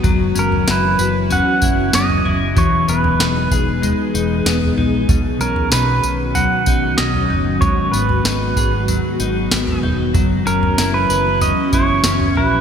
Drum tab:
TB |x-x-x-x-x-x-x---|x-x-x-x-x-x-x---|x-x-x-x-x-x-x---|x-x-x-x-x-x-x---|
SD |----o-------o---|----o-------o---|----o-------o---|----o-------o---|
FT |o--o----o----oo-|o--o----o----oo-|o--o----o----oo-|o--o----o----oo-|
BD |o---------o-----|o-----o---------|o---------o-----|o-----o---------|

TB |x-x-x-x-x-x-x---|
SD |----o-------o---|
FT |o--o----o----oo-|
BD |o---------o-----|